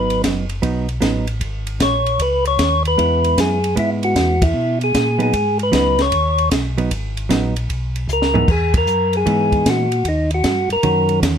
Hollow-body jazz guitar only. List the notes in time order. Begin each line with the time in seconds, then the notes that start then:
Already playing: F#3 B3 D#4
0.62 F#3 B3 D#4
1.01 F#3 B3 D#4
2.98 G#3 B3 E4
3.76 G#3 B3 E4
5.19 F#3 B3 D#4
5.72 F#3 B3 D#4
6.78 F#3 B3 D#4
7.29 F#3 B3 D#4
8.34 E3 G#3 B3 D#4
9.26 E3 G#3 B3 D#4
10.83 D#3 C#4 F#4